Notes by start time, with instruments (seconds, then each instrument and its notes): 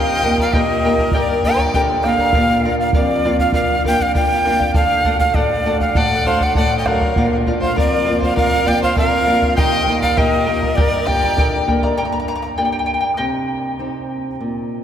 Already playing: nylon-string guitar D#3, charango G4 A#4 D#5 G5 A#5, violin D#5, quena G5
0.23 nylon-string guitar A#3 D#4 G4, charango A#4 D#5 G5 A#5, bombo low
0.38 charango A#4 D#5 A#5, violin D5, quena F5, bombo low
0.53 nylon-string guitar A#2, charango G4 A#4 D#5 G5 A#5, violin A#4, quena D#5, bombo low
0.85 nylon-string guitar A#3 D#4 G4, charango A#4 D#5 G5 A#5
0.98 charango A#4 D#5 A#5, bombo low
1.12 nylon-string guitar G2, charango G4 A#4 D5 G5 A#5, violin A#4, quena D5, bombo low
1.43 nylon-string guitar A#3 D4 G4, charango A#4 D5 G5 A#5, violin D5, quena G5, bombo low
1.59 charango A#4 D5 A#5, bombo low
1.74 nylon-string guitar D3, charango G4 A#4 D5 G5 A#5, quena G5, bombo low
2.04 nylon-string guitar A#3 D4 G4, charango A#4 D5 G5 A#5, quena F5, bombo rim
2.18 charango D5 A#5, bombo low
2.22 charango A#4
2.33 nylon-string guitar A#2, charango A#4 D5 F5, bombo low
2.65 nylon-string guitar A#3 D4 F4, charango A#4 D5 F5
2.80 charango D5 F5, quena F5
2.93 nylon-string guitar F2, charango A#4 D5 F5, quena D5, bombo low
3.25 nylon-string guitar A#3 D4 F4, charango A#4 D5 F5
3.39 charango D5 F5, quena F5, bombo low
3.53 nylon-string guitar F2, charango A#4 D5 F5, quena F5, bombo low
3.84 nylon-string guitar A#3 D4 F4, charango A#4 D5 F5, quena G5, bombo low
3.99 charango D5 F5, quena F5, bombo low
4.14 nylon-string guitar F2, charango A#4 D5 F5, quena G5, bombo low
4.44 nylon-string guitar A#3 D4 F4, charango A#4 D5 F5
4.59 charango D5 F5, bombo low
4.74 nylon-string guitar D3, charango A4 D5, quena F5, bombo low
5.04 nylon-string guitar A3 D4 F#4, charango A4 D5 F#5, bombo low
5.19 charango D5 F#5, quena F5, bombo low
5.34 nylon-string guitar A2, charango A4 D5 F#5, quena D5, bombo low
5.66 nylon-string guitar A3 D4 F#4, charango A4 D5 F#5
5.80 charango D5 F#5, quena F5, bombo low
5.95 nylon-string guitar A2, charango A4 D5 F#5, violin D5, quena F#5, bombo low
6.25 nylon-string guitar A3 D4 F#4, charango A4 D5 F#5, violin C5, quena F5, bombo low
6.41 charango D5 F#5, violin D5, quena F#5, bombo low
6.55 nylon-string guitar A2, charango A4 D5 F#5, violin D5, quena F#5, bombo low
6.78 violin D#5, quena G5
6.86 nylon-string guitar F#3 D4 F#4, charango A4 D5 F#5, violin A#4, quena F5, bombo rim, bombo low
7.01 charango D5 F#5, bombo low
7.16 nylon-string guitar A#2, charango A#4 D5 F5, bombo low
7.46 nylon-string guitar A#3 D4 F4, charango A#4 D5 F5, bombo low
7.61 violin C5, charango D5 F5, quena F5, bombo low
7.76 nylon-string guitar F2, charango A#4 D5 F5, violin A#4, quena D5, bombo low
8.05 nylon-string guitar A#3 D4 F4, charango A#4 D5 F5
8.20 violin C5, charango D5 F5, quena F5, bombo low
8.35 nylon-string guitar F2, violin A#4, charango A#4 D5 F5, quena F5, bombo low
8.65 nylon-string guitar A#3 D4 F4, charango A#4 D5 F5, violin D5, quena G5, bombo low
8.81 violin C5, charango D5 F5, quena F5, bombo low
8.96 nylon-string guitar F2, charango A#4 D5 F5, violin A#4, quena F5, bombo low
9.26 nylon-string guitar A#3 D4 F4, charango A#4 D5 F5
9.41 charango D5 F5, bombo low
9.56 nylon-string guitar D#3, charango G4 A#4 D#5 G5 A#5, violin D#5, quena G5, bombo low
9.87 nylon-string guitar A#3 D#4 G4, charango A#4 D#5 G5 A#5, bombo low
10.01 charango A#4 D#5 A#5, violin D5, quena F5, bombo low
10.17 nylon-string guitar A#2, charango G4 A#4 D#5 G5 A#5, violin A#4, quena D#5, bombo low
10.46 nylon-string guitar A#3 D#4 G4, charango A#4 D#5 G5 A#5
10.61 charango A#4 D#5 A#5, bombo low
10.75 nylon-string guitar G2, charango G4 A#4 D5 G5 A#5, violin A#4, quena D5, bombo low
11.05 nylon-string guitar A#3 D4 G4, charango A#4 D5 G5 A#5, violin D5, quena G5, bombo low
11.22 charango A#4 D5 A#5, bombo low
11.37 nylon-string guitar D3, charango G4 A#4 D5 G5 A#5, bombo low
11.67 nylon-string guitar A#3 D4 G4, charango A#4 D5 G5 A#5, bombo low
11.82 charango A#4 D5 A#5, bombo low
11.97 nylon-string guitar G2, charango G5 A#5
12.05 charango A#5
12.12 charango A#5
12.20 charango A#5
12.28 charango A#5
12.35 charango A#5
12.42 charango A#5
12.58 nylon-string guitar A#3 D4 G4, charango D5 G5
12.65 charango G5
12.72 charango G5
12.79 charango G5
12.86 charango G5
12.94 charango G5
13.01 charango G5
13.17 nylon-string guitar C3, charango D#5 G5
13.79 nylon-string guitar C4 D#4 G4
14.41 nylon-string guitar A#2